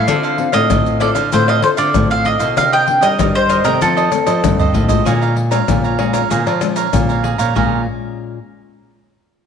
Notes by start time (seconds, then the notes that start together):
Already playing: F5
0.07 D3 C4 D4 F4 A4 C5 F5, pandeiro, tamborim, maracas, surdo
0.23 A4 C5 F5, pandeiro, maracas
0.38 C4 F4 A4, muted cavaquinho stroke, pandeiro
0.52 A2 C4 F4 A4 C5 D#5 F5, pandeiro, tamborim, maracas
0.70 A2 A4 C5 F5, pandeiro, tamborim, maracas, surdo
0.86 pandeiro, maracas
1.00 C4 D4 F4 A4 C5 D5 F5, pandeiro, tamborim
1.15 D3 A4 C5 F5, pandeiro, tamborim, maracas
1.32 A2 D3 C4 D4 F4 A4 C5 F5, pandeiro, maracas, surdo
1.48 A4 C5 D#5 F5, pandeiro, tamborim, maracas
1.62 C4 F4 A4 C5, muted cavaquinho stroke, pandeiro, tamborim
1.77 D3 A4 C5 D5 F5, pandeiro, maracas
1.94 A2 C4 F4 A4, pandeiro, tamborim, maracas, surdo
2.10 A4 C5 F5, pandeiro, maracas
2.24 D4 A4 C5 D#5 F5, pandeiro
2.39 B2 A4 C5 F5, pandeiro, maracas
2.56 C3 D#3 A#3 D4 D#4 A#4 C5 D#5 F5, pandeiro, tamborim, maracas, surdo
2.72 A#4 C5 D#5 G5, pandeiro, maracas
2.87 D#3 A#3 D4, muted cavaquinho stroke, pandeiro
3.01 G3 A#4 C5 D#5, pandeiro, tamborim, maracas
3.18 G2 D#3 G3 A#3 D4 D#4 A#4 C5 D#5, pandeiro, tamborim, maracas, surdo
3.35 C5, pandeiro, maracas
3.49 D#4 A#4 C5 D#5, pandeiro, tamborim, maracas
3.64 C3 D#3 A3 C4 A#4 C5 D#5, pandeiro, tamborim, maracas
3.81 F2 F3 F4 A4 C5 D#5, pandeiro, maracas, surdo
3.97 A4 C5 D#5, pandeiro, tamborim, maracas
4.12 D#3 A3 C4, muted cavaquinho stroke, pandeiro, tamborim, maracas
4.26 F3 A4 C5 D#5, pandeiro, tamborim, maracas
4.44 G2 C3 D#3 A3 C4, pandeiro, tamborim, maracas, surdo
4.59 A4 C5 D#5, surdo, pandeiro, maracas
4.74 A2 F4 A4 C5 D#5, pandeiro, surdo
4.89 G#3 C#4 F4 A4 C5 D#5, pandeiro, maracas, surdo
5.05 A#2 G#4 C#5 F5 A#5, pandeiro, tamborim, maracas, surdo
5.21 C#5 F5 A#5, pandeiro, maracas
5.36 muted cavaquinho stroke, pandeiro
5.51 G#3 C#4 F4 C#5 F5 A#5, pandeiro, tamborim, maracas
5.68 F2 A#2 G#3 C#4 F4, pandeiro, tamborim, maracas, surdo
5.84 C#5 F5 A#5, pandeiro, maracas
5.98 G#3 C#4 F4 G#4 C#5 F5 A#5, pandeiro, tamborim
6.13 C#5 F5 A#5, pandeiro, tamborim, maracas
6.30 A#2 G#4 C#5 F5 A#5, pandeiro, maracas, surdo
6.46 F3 C#5 F5 A#5, pandeiro, tamborim, maracas
6.61 G#3 C#4 F4, muted cavaquinho stroke, pandeiro, tamborim, maracas
6.76 C#5 F5 A#5, pandeiro, maracas
6.93 F2 A#2 G#3 C#4 F4, pandeiro, tamborim, maracas, surdo
7.09 C#5 F5 A#5, pandeiro, maracas
7.23 G#4 C#5 F5 A#5, pandeiro
7.38 A#2 C#5 F5 A#5, pandeiro, maracas
7.55 A#2 G#3 C#4 F4 G#4 C#5 F5 A#5, surdo